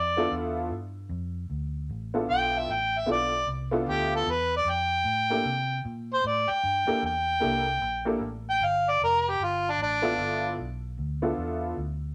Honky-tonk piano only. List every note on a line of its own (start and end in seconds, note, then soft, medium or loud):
0.17 0.68 B3 medium
0.17 0.68 D4 medium
0.17 0.68 E4 medium
0.17 0.68 F4 medium
0.17 0.69 A4 medium
2.14 2.65 B3 medium
2.14 2.65 D4 medium
2.14 2.65 E4 medium
2.14 2.65 F4 medium
2.14 2.66 A4 medium
3.06 3.30 B3 medium
3.06 3.30 D4 medium
3.06 3.30 E4 medium
3.06 3.30 F4 medium
3.06 3.30 A4 medium
3.71 4.23 B3 medium
3.71 4.23 D4 medium
3.71 4.23 E4 medium
3.71 4.23 F4 medium
3.71 4.24 A4 medium
5.30 5.43 A#3 medium
5.30 5.43 D4 medium
5.30 5.43 E4 medium
5.30 5.44 G4 medium
5.30 5.44 A4 medium
6.87 7.01 A#3 medium
6.87 7.01 D4 medium
6.87 7.01 E4 medium
6.87 7.01 G4 medium
6.87 7.01 A4 medium
7.40 7.64 A#3 medium
7.40 7.64 D4 medium
7.40 7.64 E4 medium
7.40 7.65 G4 medium
7.40 7.64 A4 medium
8.05 8.19 A#3 medium
8.05 8.19 D4 medium
8.05 8.19 E4 medium
8.05 8.19 G4 medium
8.05 8.20 A4 medium
10.02 10.54 B3 medium
10.02 10.54 D4 medium
10.02 10.54 E4 medium
10.02 10.55 F4 medium
10.02 10.55 A4 medium
11.22 11.73 B3 medium
11.22 11.74 D4 medium
11.22 11.74 E4 medium
11.22 11.74 F4 medium
11.22 11.74 A4 medium